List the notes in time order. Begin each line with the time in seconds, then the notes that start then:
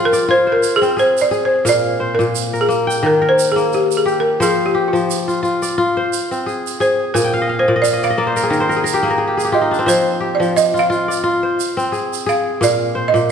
Already playing: F3 F4 G4
0.05 A#4
0.13 D5, shaker
0.28 F4 C5
0.47 C5
0.52 A#4
0.63 shaker
0.76 G#4
0.82 C4, shaker
0.97 G#4 C5, shaker
1.17 shaker
1.21 D5
1.31 G#4, shaker
1.45 C5
1.65 A#2 F5, shaker
1.69 D5
2.00 C5
2.15 A#4
2.19 A#2, shaker
2.35 shaker
2.53 A#4, shaker
2.61 G#4
2.69 A#3, shaker
2.87 G5, shaker
3.03 D#3 A#4
3.22 A#4
3.29 C5
3.39 shaker
3.52 G#4
3.56 A#3, shaker
3.73 G4, shaker
3.91 shaker
3.97 G#4
4.06 G4, shaker
4.20 A#4
4.40 F3 G#4 C5, shaker
4.66 G4
4.75 G4
4.88 F4
4.93 F3, shaker
5.11 shaker
5.28 F4, shaker
5.43 F4, shaker
5.62 D5, shaker
5.78 F4
5.97 C5
6.13 shaker
6.31 C4, shaker
6.46 G#4, shaker
6.67 shaker
6.80 G#4 C5, shaker
7.14 A#2 A#4 G#5, shaker
7.24 G5
7.34 F5
7.42 D#5
7.49 F5
7.59 C5 D#5
7.68 A#2 D5
7.76 D#5
7.82 D5 F5, shaker
7.93 D#5
8.03 D5 F5, shaker
8.10 D#5
8.18 A#3 D5
8.27 C5
8.36 A#4, shaker
8.43 G#4
8.50 D#3 A#4, shaker
8.60 C5
8.69 A#4, shaker
8.76 G#4
8.84 A#4, shaker
8.94 G4
9.03 A#3 G#4
9.10 A#4
9.18 G#4
9.28 G4
9.37 G#4, shaker
9.45 G4
9.52 F4 G4 D#5
9.61 D#4
9.71 D4, shaker
9.79 C4
9.86 F3 C5, shaker
10.20 G4
10.35 D5
10.40 F3, shaker
10.57 D#5, shaker
10.74 F4, shaker
10.79 F5
10.90 F4, shaker
11.08 D5, shaker
11.24 F4
11.43 C5
11.60 shaker
11.77 C4, shaker
11.92 G#4, shaker
12.13 shaker
12.26 G#4 F5, shaker
12.61 A#2 D5 F5, shaker
12.95 C5
13.08 D#5
13.14 A#2, shaker